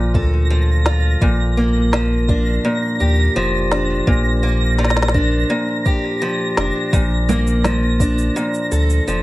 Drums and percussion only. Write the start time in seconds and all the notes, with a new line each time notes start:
0.14 kick
0.86 snare
1.21 kick
1.93 snare
2.29 kick
3.71 snare
4.07 kick
4.79 snare
4.84 snare
4.90 snare
4.96 snare
5.02 snare
5.08 snare
5.14 kick
5.86 kick
6.57 snare
6.93 kick, cabasa
7.29 low conga, cabasa
7.47 cabasa
7.64 snare, low conga, cabasa
8.00 kick, cabasa
8.18 cabasa
8.36 cabasa
8.54 cabasa
8.72 cabasa
8.90 cabasa
9.08 cabasa